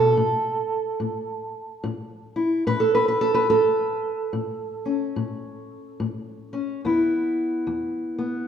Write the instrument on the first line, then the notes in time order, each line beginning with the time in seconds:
steel-string acoustic guitar
Already playing: B2 F#4 A4
0.17 A2
1.00 A2
1.84 A2
2.36 E4
2.67 A2 B4
2.80 A4
2.95 B4
3.08 B4
3.21 A4
3.34 B4
3.50 A2 A4
4.33 A2
4.86 C#4
5.16 A2
6.00 A2
6.53 C#4
6.85 E2 B3 E4
7.67 E2
8.19 B3